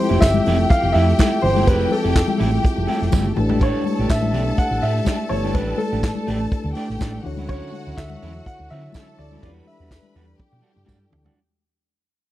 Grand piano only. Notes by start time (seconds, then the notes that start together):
Already playing: C5
0.20 E5
0.70 F5
0.93 E5
1.42 C5
1.67 B4
1.92 A4
3.63 C#5
4.10 E5
4.58 F#5
4.82 E5
5.29 C#5
5.54 B4
5.78 A4
7.49 C#5
7.97 E5
8.46 F#5
8.70 E5
9.19 D5
9.43 D5
9.67 E5